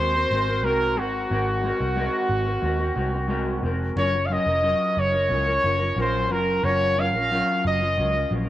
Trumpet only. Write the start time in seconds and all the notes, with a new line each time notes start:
Already playing: C5
0.64 A#4
0.99 F#4
3.98 C#5
4.26 F5
4.33 D#5
4.99 C#5
6.01 C5
6.32 A#4
6.64 C#5
7.00 F5
7.67 D#5